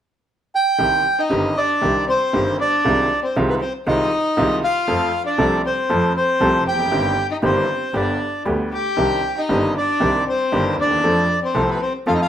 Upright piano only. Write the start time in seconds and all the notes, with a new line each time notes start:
0.78 C2 C3 D#3 G3 C4 G4
1.30 G1 G2 D#3 G3 C4 G4
1.81 C2 C3 D#3 G3 C4 G4
2.33 G1 G2 D#3 G3 C4 G4
2.84 C2 C3 D#3 G#3 C4 F4
3.36 C2 C3 D#3 G#3 C4 F4
3.87 C2 C3 D#3 G#3 C4 F4
4.37 C2 C3 D#3 G#3 C4 F4
4.88 F2 F3 A3 C4 A4
5.38 C2 C3 F3 A3 C4 A4
5.90 F2 F3 A3 C4 A4
6.41 C2 C3 F3 A3 C4 A4
6.72 E2
6.79 F2
6.85 F#2
6.92 G1 G2 D#3 G3 C4 G4
7.42 G1 G2 D#3 G3 C4 G4
7.94 G1 G2 D3 G3 B3 G4
8.45 D2 D3 G3 B3 G4
8.97 C2 C3 D#3 C4 D4 G4
9.49 G1 G2 D#3 C4 D4 G4
10.00 C2 C3 D#3 C4 D4 G4
10.52 G1 G2 D#3 C4 D4 G4
10.85 D2
10.91 D#2
10.98 E2
11.03 F2 F3 A3 C4 A4
11.54 C2 C3 F3 A3 C4 A4
12.06 F2 F3 A3 C4 A4